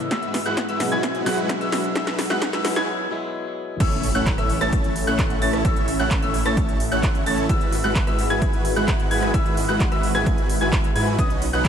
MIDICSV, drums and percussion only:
0, 0, Header, 1, 2, 480
1, 0, Start_track
1, 0, Key_signature, 4, "major"
1, 0, Tempo, 461538
1, 114, Time_signature, 4, 2, 24, 8
1, 12149, End_track
2, 0, Start_track
2, 0, Title_t, "Drums"
2, 114, Note_on_c, 9, 36, 122
2, 114, Note_on_c, 9, 38, 76
2, 114, Note_on_c, 9, 42, 86
2, 218, Note_off_c, 9, 36, 0
2, 218, Note_off_c, 9, 38, 0
2, 218, Note_off_c, 9, 42, 0
2, 235, Note_on_c, 9, 42, 36
2, 339, Note_off_c, 9, 42, 0
2, 354, Note_on_c, 9, 38, 76
2, 354, Note_on_c, 9, 46, 110
2, 458, Note_off_c, 9, 38, 0
2, 458, Note_off_c, 9, 46, 0
2, 474, Note_on_c, 9, 42, 41
2, 578, Note_off_c, 9, 42, 0
2, 593, Note_on_c, 9, 36, 124
2, 594, Note_on_c, 9, 38, 77
2, 594, Note_on_c, 9, 42, 91
2, 697, Note_off_c, 9, 36, 0
2, 698, Note_off_c, 9, 38, 0
2, 698, Note_off_c, 9, 42, 0
2, 713, Note_on_c, 9, 42, 36
2, 817, Note_off_c, 9, 42, 0
2, 833, Note_on_c, 9, 38, 78
2, 833, Note_on_c, 9, 46, 113
2, 937, Note_off_c, 9, 38, 0
2, 937, Note_off_c, 9, 46, 0
2, 1073, Note_on_c, 9, 36, 123
2, 1073, Note_on_c, 9, 38, 76
2, 1073, Note_on_c, 9, 42, 89
2, 1177, Note_off_c, 9, 36, 0
2, 1177, Note_off_c, 9, 38, 0
2, 1177, Note_off_c, 9, 42, 0
2, 1193, Note_on_c, 9, 42, 36
2, 1297, Note_off_c, 9, 42, 0
2, 1313, Note_on_c, 9, 38, 87
2, 1313, Note_on_c, 9, 46, 116
2, 1417, Note_off_c, 9, 38, 0
2, 1417, Note_off_c, 9, 46, 0
2, 1434, Note_on_c, 9, 42, 39
2, 1538, Note_off_c, 9, 42, 0
2, 1553, Note_on_c, 9, 36, 122
2, 1554, Note_on_c, 9, 38, 85
2, 1554, Note_on_c, 9, 42, 96
2, 1657, Note_off_c, 9, 36, 0
2, 1658, Note_off_c, 9, 38, 0
2, 1658, Note_off_c, 9, 42, 0
2, 1674, Note_on_c, 9, 42, 37
2, 1778, Note_off_c, 9, 42, 0
2, 1793, Note_on_c, 9, 38, 87
2, 1793, Note_on_c, 9, 46, 108
2, 1897, Note_off_c, 9, 38, 0
2, 1897, Note_off_c, 9, 46, 0
2, 1913, Note_on_c, 9, 42, 39
2, 2017, Note_off_c, 9, 42, 0
2, 2033, Note_on_c, 9, 36, 121
2, 2033, Note_on_c, 9, 38, 93
2, 2033, Note_on_c, 9, 42, 92
2, 2137, Note_off_c, 9, 36, 0
2, 2137, Note_off_c, 9, 38, 0
2, 2137, Note_off_c, 9, 42, 0
2, 2153, Note_on_c, 9, 38, 81
2, 2153, Note_on_c, 9, 42, 36
2, 2257, Note_off_c, 9, 38, 0
2, 2257, Note_off_c, 9, 42, 0
2, 2273, Note_on_c, 9, 38, 92
2, 2273, Note_on_c, 9, 46, 116
2, 2377, Note_off_c, 9, 38, 0
2, 2377, Note_off_c, 9, 46, 0
2, 2393, Note_on_c, 9, 38, 85
2, 2393, Note_on_c, 9, 42, 38
2, 2497, Note_off_c, 9, 38, 0
2, 2497, Note_off_c, 9, 42, 0
2, 2513, Note_on_c, 9, 36, 125
2, 2513, Note_on_c, 9, 38, 100
2, 2513, Note_on_c, 9, 42, 93
2, 2617, Note_off_c, 9, 36, 0
2, 2617, Note_off_c, 9, 38, 0
2, 2617, Note_off_c, 9, 42, 0
2, 2633, Note_on_c, 9, 38, 84
2, 2633, Note_on_c, 9, 42, 37
2, 2737, Note_off_c, 9, 38, 0
2, 2737, Note_off_c, 9, 42, 0
2, 2752, Note_on_c, 9, 38, 99
2, 2752, Note_on_c, 9, 46, 110
2, 2856, Note_off_c, 9, 38, 0
2, 2856, Note_off_c, 9, 46, 0
2, 2874, Note_on_c, 9, 38, 88
2, 2874, Note_on_c, 9, 42, 37
2, 2978, Note_off_c, 9, 38, 0
2, 2978, Note_off_c, 9, 42, 0
2, 3954, Note_on_c, 9, 36, 113
2, 3954, Note_on_c, 9, 42, 102
2, 3954, Note_on_c, 9, 49, 100
2, 4058, Note_off_c, 9, 36, 0
2, 4058, Note_off_c, 9, 42, 0
2, 4058, Note_off_c, 9, 49, 0
2, 4075, Note_on_c, 9, 42, 41
2, 4179, Note_off_c, 9, 42, 0
2, 4195, Note_on_c, 9, 46, 102
2, 4299, Note_off_c, 9, 46, 0
2, 4316, Note_on_c, 9, 42, 42
2, 4420, Note_off_c, 9, 42, 0
2, 4434, Note_on_c, 9, 36, 125
2, 4436, Note_on_c, 9, 42, 95
2, 4437, Note_on_c, 9, 39, 122
2, 4538, Note_off_c, 9, 36, 0
2, 4540, Note_off_c, 9, 42, 0
2, 4541, Note_off_c, 9, 39, 0
2, 4556, Note_on_c, 9, 37, 62
2, 4556, Note_on_c, 9, 42, 38
2, 4660, Note_off_c, 9, 37, 0
2, 4660, Note_off_c, 9, 42, 0
2, 4675, Note_on_c, 9, 46, 88
2, 4779, Note_off_c, 9, 46, 0
2, 4795, Note_on_c, 9, 37, 77
2, 4795, Note_on_c, 9, 42, 41
2, 4899, Note_off_c, 9, 37, 0
2, 4899, Note_off_c, 9, 42, 0
2, 4914, Note_on_c, 9, 36, 113
2, 4915, Note_on_c, 9, 42, 94
2, 5018, Note_off_c, 9, 36, 0
2, 5019, Note_off_c, 9, 42, 0
2, 5036, Note_on_c, 9, 42, 43
2, 5140, Note_off_c, 9, 42, 0
2, 5155, Note_on_c, 9, 46, 106
2, 5259, Note_off_c, 9, 46, 0
2, 5394, Note_on_c, 9, 36, 117
2, 5395, Note_on_c, 9, 42, 99
2, 5396, Note_on_c, 9, 39, 127
2, 5498, Note_off_c, 9, 36, 0
2, 5499, Note_off_c, 9, 42, 0
2, 5500, Note_off_c, 9, 39, 0
2, 5514, Note_on_c, 9, 42, 44
2, 5618, Note_off_c, 9, 42, 0
2, 5634, Note_on_c, 9, 46, 92
2, 5738, Note_off_c, 9, 46, 0
2, 5755, Note_on_c, 9, 37, 80
2, 5755, Note_on_c, 9, 42, 41
2, 5859, Note_off_c, 9, 37, 0
2, 5859, Note_off_c, 9, 42, 0
2, 5874, Note_on_c, 9, 36, 118
2, 5874, Note_on_c, 9, 42, 100
2, 5978, Note_off_c, 9, 36, 0
2, 5978, Note_off_c, 9, 42, 0
2, 5994, Note_on_c, 9, 42, 40
2, 6098, Note_off_c, 9, 42, 0
2, 6113, Note_on_c, 9, 46, 115
2, 6217, Note_off_c, 9, 46, 0
2, 6233, Note_on_c, 9, 42, 41
2, 6337, Note_off_c, 9, 42, 0
2, 6354, Note_on_c, 9, 36, 127
2, 6354, Note_on_c, 9, 42, 96
2, 6355, Note_on_c, 9, 39, 127
2, 6458, Note_off_c, 9, 36, 0
2, 6458, Note_off_c, 9, 42, 0
2, 6459, Note_off_c, 9, 39, 0
2, 6473, Note_on_c, 9, 42, 39
2, 6577, Note_off_c, 9, 42, 0
2, 6594, Note_on_c, 9, 46, 95
2, 6698, Note_off_c, 9, 46, 0
2, 6714, Note_on_c, 9, 37, 74
2, 6714, Note_on_c, 9, 42, 39
2, 6818, Note_off_c, 9, 37, 0
2, 6818, Note_off_c, 9, 42, 0
2, 6833, Note_on_c, 9, 36, 127
2, 6834, Note_on_c, 9, 42, 93
2, 6937, Note_off_c, 9, 36, 0
2, 6938, Note_off_c, 9, 42, 0
2, 6954, Note_on_c, 9, 42, 41
2, 7058, Note_off_c, 9, 42, 0
2, 7073, Note_on_c, 9, 46, 118
2, 7177, Note_off_c, 9, 46, 0
2, 7194, Note_on_c, 9, 42, 40
2, 7298, Note_off_c, 9, 42, 0
2, 7313, Note_on_c, 9, 36, 121
2, 7314, Note_on_c, 9, 42, 96
2, 7315, Note_on_c, 9, 39, 121
2, 7417, Note_off_c, 9, 36, 0
2, 7418, Note_off_c, 9, 42, 0
2, 7419, Note_off_c, 9, 39, 0
2, 7435, Note_on_c, 9, 42, 43
2, 7539, Note_off_c, 9, 42, 0
2, 7555, Note_on_c, 9, 46, 101
2, 7659, Note_off_c, 9, 46, 0
2, 7675, Note_on_c, 9, 42, 41
2, 7779, Note_off_c, 9, 42, 0
2, 7793, Note_on_c, 9, 36, 124
2, 7794, Note_on_c, 9, 42, 95
2, 7897, Note_off_c, 9, 36, 0
2, 7898, Note_off_c, 9, 42, 0
2, 7914, Note_on_c, 9, 42, 38
2, 8018, Note_off_c, 9, 42, 0
2, 8033, Note_on_c, 9, 46, 117
2, 8137, Note_off_c, 9, 46, 0
2, 8154, Note_on_c, 9, 42, 41
2, 8258, Note_off_c, 9, 42, 0
2, 8273, Note_on_c, 9, 36, 125
2, 8273, Note_on_c, 9, 42, 95
2, 8274, Note_on_c, 9, 39, 127
2, 8377, Note_off_c, 9, 36, 0
2, 8377, Note_off_c, 9, 42, 0
2, 8378, Note_off_c, 9, 39, 0
2, 8395, Note_on_c, 9, 37, 58
2, 8395, Note_on_c, 9, 42, 39
2, 8499, Note_off_c, 9, 37, 0
2, 8499, Note_off_c, 9, 42, 0
2, 8514, Note_on_c, 9, 46, 101
2, 8618, Note_off_c, 9, 46, 0
2, 8634, Note_on_c, 9, 37, 72
2, 8634, Note_on_c, 9, 42, 37
2, 8738, Note_off_c, 9, 37, 0
2, 8738, Note_off_c, 9, 42, 0
2, 8754, Note_on_c, 9, 36, 126
2, 8755, Note_on_c, 9, 42, 90
2, 8858, Note_off_c, 9, 36, 0
2, 8859, Note_off_c, 9, 42, 0
2, 8874, Note_on_c, 9, 42, 37
2, 8978, Note_off_c, 9, 42, 0
2, 8994, Note_on_c, 9, 46, 117
2, 9098, Note_off_c, 9, 46, 0
2, 9114, Note_on_c, 9, 42, 40
2, 9218, Note_off_c, 9, 42, 0
2, 9234, Note_on_c, 9, 36, 126
2, 9234, Note_on_c, 9, 42, 92
2, 9236, Note_on_c, 9, 39, 127
2, 9338, Note_off_c, 9, 36, 0
2, 9338, Note_off_c, 9, 42, 0
2, 9340, Note_off_c, 9, 39, 0
2, 9355, Note_on_c, 9, 42, 38
2, 9459, Note_off_c, 9, 42, 0
2, 9474, Note_on_c, 9, 46, 100
2, 9578, Note_off_c, 9, 46, 0
2, 9595, Note_on_c, 9, 37, 74
2, 9595, Note_on_c, 9, 42, 39
2, 9699, Note_off_c, 9, 37, 0
2, 9699, Note_off_c, 9, 42, 0
2, 9714, Note_on_c, 9, 36, 118
2, 9715, Note_on_c, 9, 42, 92
2, 9818, Note_off_c, 9, 36, 0
2, 9819, Note_off_c, 9, 42, 0
2, 9835, Note_on_c, 9, 42, 37
2, 9939, Note_off_c, 9, 42, 0
2, 9955, Note_on_c, 9, 46, 116
2, 10059, Note_off_c, 9, 46, 0
2, 10076, Note_on_c, 9, 42, 41
2, 10180, Note_off_c, 9, 42, 0
2, 10194, Note_on_c, 9, 36, 127
2, 10195, Note_on_c, 9, 42, 90
2, 10196, Note_on_c, 9, 39, 118
2, 10298, Note_off_c, 9, 36, 0
2, 10299, Note_off_c, 9, 42, 0
2, 10300, Note_off_c, 9, 39, 0
2, 10315, Note_on_c, 9, 37, 55
2, 10315, Note_on_c, 9, 42, 37
2, 10419, Note_off_c, 9, 37, 0
2, 10419, Note_off_c, 9, 42, 0
2, 10435, Note_on_c, 9, 46, 96
2, 10539, Note_off_c, 9, 46, 0
2, 10555, Note_on_c, 9, 37, 79
2, 10659, Note_off_c, 9, 37, 0
2, 10674, Note_on_c, 9, 36, 120
2, 10675, Note_on_c, 9, 42, 88
2, 10778, Note_off_c, 9, 36, 0
2, 10779, Note_off_c, 9, 42, 0
2, 10795, Note_on_c, 9, 42, 37
2, 10899, Note_off_c, 9, 42, 0
2, 10914, Note_on_c, 9, 46, 112
2, 11018, Note_off_c, 9, 46, 0
2, 11035, Note_on_c, 9, 42, 36
2, 11139, Note_off_c, 9, 42, 0
2, 11153, Note_on_c, 9, 36, 127
2, 11154, Note_on_c, 9, 42, 85
2, 11155, Note_on_c, 9, 39, 124
2, 11257, Note_off_c, 9, 36, 0
2, 11258, Note_off_c, 9, 42, 0
2, 11259, Note_off_c, 9, 39, 0
2, 11275, Note_on_c, 9, 42, 40
2, 11379, Note_off_c, 9, 42, 0
2, 11394, Note_on_c, 9, 46, 100
2, 11498, Note_off_c, 9, 46, 0
2, 11514, Note_on_c, 9, 42, 38
2, 11618, Note_off_c, 9, 42, 0
2, 11633, Note_on_c, 9, 36, 120
2, 11634, Note_on_c, 9, 42, 90
2, 11737, Note_off_c, 9, 36, 0
2, 11738, Note_off_c, 9, 42, 0
2, 11755, Note_on_c, 9, 42, 36
2, 11859, Note_off_c, 9, 42, 0
2, 11875, Note_on_c, 9, 46, 113
2, 11979, Note_off_c, 9, 46, 0
2, 11995, Note_on_c, 9, 42, 41
2, 12099, Note_off_c, 9, 42, 0
2, 12114, Note_on_c, 9, 36, 127
2, 12115, Note_on_c, 9, 42, 92
2, 12116, Note_on_c, 9, 39, 115
2, 12149, Note_off_c, 9, 36, 0
2, 12149, Note_off_c, 9, 39, 0
2, 12149, Note_off_c, 9, 42, 0
2, 12149, End_track
0, 0, End_of_file